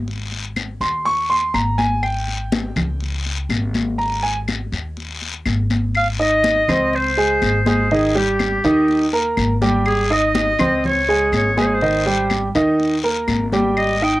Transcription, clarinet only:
5.97 6.07 F5 loud
6.22 6.97 D#5 loud
6.96 7.68 C5 loud
7.69 7.90 C5 medium
7.94 8.15 G#4 medium
8.18 9.10 G4 medium
9.87 10.14 G#4 loud
10.12 10.85 D#5 loud
10.86 11.30 C#5 loud
11.36 11.57 C#5 loud
11.60 11.67 C5 medium
11.66 11.75 C#5 medium
11.74 12.32 C5 loud
13.78 14.05 D#5 loud
14.03 14.20 G5 loud

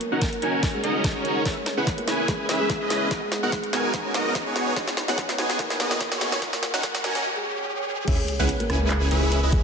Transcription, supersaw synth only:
0.12 0.21 C#4 loud
0.12 0.21 D#4 medium
0.12 0.21 F#4 medium
0.12 0.21 A#4 medium
0.12 0.21 F#5 loud
0.42 0.81 C#4 medium
0.42 0.81 D#4 medium
0.42 0.81 F#4 medium
0.42 0.81 A#4 medium
0.42 0.81 G#5 loud
0.83 1.13 C#4 loud
0.83 1.13 D#4 medium
0.83 1.13 F#4 medium
0.83 1.13 A#4 medium
0.83 1.13 D#5 loud
1.15 1.43 C#4 medium
1.15 1.43 D#4 medium
1.15 1.43 F#4 medium
1.15 1.43 A#4 medium
1.15 1.43 C#5 medium
1.45 1.56 C#4 medium
1.45 1.56 E4 medium
1.45 1.56 G#4 medium
1.45 1.56 B4 medium
1.45 1.56 E5 loud
1.77 1.86 C#4 loud
1.77 1.86 E4 loud
1.77 1.86 G#4 medium
1.77 1.86 B4 medium
1.77 1.86 F#5 loud
2.07 2.47 C#4 medium
2.07 2.47 E4 medium
2.07 2.47 G#4 medium
2.07 2.47 B4 medium
2.07 2.47 G#5 loud
2.49 2.78 C#4 loud
2.49 2.78 E4 medium
2.49 2.78 G#4 medium
2.49 2.78 B4 medium
2.49 2.78 E5 loud
2.81 3.09 C#4 medium
2.81 3.09 E4 medium
2.81 3.09 G#4 medium
2.81 3.09 B4 medium
2.81 3.09 D#5 loud
3.11 3.21 B3 medium
3.11 3.21 D#4 medium
3.11 3.21 F#4 medium
3.11 3.21 A#4 medium
3.11 3.21 D#5 loud
3.43 3.52 B3 loud
3.43 3.52 D#4 medium
3.43 3.52 F#4 medium
3.43 3.52 A#4 medium
3.43 3.52 F#5 loud
3.73 4.12 B3 medium
3.73 4.12 D#4 medium
3.73 4.12 F#4 medium
3.73 4.12 A#4 medium
3.73 4.12 G#5 loud
4.14 4.44 B3 loud
4.14 4.44 D#4 medium
4.14 4.44 F#4 medium
4.14 4.44 A#4 medium
4.14 4.44 D#5 loud
4.46 4.74 B3 medium
4.46 4.74 D#4 medium
4.46 4.74 F#4 medium
4.46 4.74 G#4 medium
4.46 4.74 C#5 loud
4.76 4.87 B3 loud
4.76 4.87 D#4 medium
4.76 4.87 F#4 medium
4.76 4.87 G#4 medium
4.76 4.87 D#5 loud
5.08 5.17 B3 loud
5.08 5.17 D#4 loud
5.08 5.17 F#4 medium
5.08 5.17 G#4 loud
5.08 5.17 F#5 loud
5.38 5.78 B3 medium
5.38 5.78 D#4 medium
5.38 5.78 F#4 medium
5.38 5.78 G#4 medium
5.38 5.78 G#5 loud
5.80 6.09 B3 loud
5.80 6.09 D#4 medium
5.80 6.09 F#4 medium
5.80 6.09 G#4 medium
5.80 6.09 D#5 loud
6.12 6.40 B3 medium
6.12 6.40 D#4 medium
6.12 6.40 F#4 medium
6.12 6.40 G#4 medium
6.12 6.40 C#5 loud
6.42 6.53 C#4 medium
6.42 6.53 D#4 medium
6.42 6.52 F#4 medium
6.42 6.52 A#4 medium
6.42 6.53 D#5 loud
6.74 6.83 C#4 loud
6.74 6.83 D#4 medium
6.74 6.83 F#4 loud
6.74 6.83 A#4 loud
6.74 6.83 F#5 loud
7.04 7.25 C#4 medium
7.04 7.25 D#4 medium
7.04 7.25 F#4 medium
7.04 7.25 A#4 medium
7.04 7.25 G#5 loud
8.08 8.18 C#4 medium
8.08 8.18 E4 medium
8.08 8.18 G#4 medium
8.08 8.18 B4 medium
8.08 8.18 E5 loud
8.39 8.48 C#4 loud
8.39 8.48 E4 medium
8.39 8.48 G#4 medium
8.39 8.48 B4 medium
8.39 8.48 F#5 loud
8.70 9.09 C#4 medium
8.70 9.09 E4 medium
8.70 9.09 G#4 medium
8.70 9.09 B4 medium
8.70 9.09 G#5 loud
9.11 9.40 C#4 loud
9.11 9.40 E4 medium
9.11 9.40 G#4 medium
9.11 9.40 B4 medium
9.11 9.40 E5 loud
9.43 9.63 C#4 medium
9.43 9.63 E4 medium
9.43 9.63 G#4 medium
9.43 9.63 B4 medium
9.43 9.63 D#5 loud

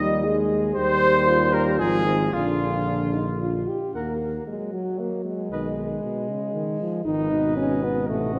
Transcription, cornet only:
0.00 0.51 D#5 loud
0.75 1.55 C5 loud
1.53 1.79 A#4 medium
1.80 2.35 G#4 loud
2.33 3.41 F4 medium
3.95 4.13 F#5 soft
5.52 5.70 D#5 soft
7.06 8.05 D#5 medium
8.09 8.39 D#5 medium

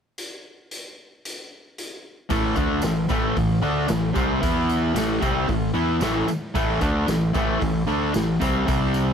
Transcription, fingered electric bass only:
2.31 2.55 A1 loud
2.57 2.82 D2 medium
2.82 3.07 A1 medium
3.10 3.35 A1 loud
3.37 3.61 A1 medium
3.63 3.88 D2 loud
3.90 4.14 A1 medium
4.16 4.41 C2 medium
4.43 4.92 E2 loud
4.94 5.20 A1 medium
5.23 5.47 C2 loud
5.49 5.73 A1 medium
5.74 5.99 E2 loud
6.01 6.26 A1 loud
6.28 muted fingered electric bass stroke soft
6.55 6.80 A1 loud
6.82 7.06 D2 loud
7.07 7.32 A1 medium
7.35 7.60 A1 loud
7.62 7.87 A1 medium
7.88 8.13 D2 loud
8.15 8.40 A1 medium
8.42 8.67 C2 medium
8.68 9.13 C2 medium

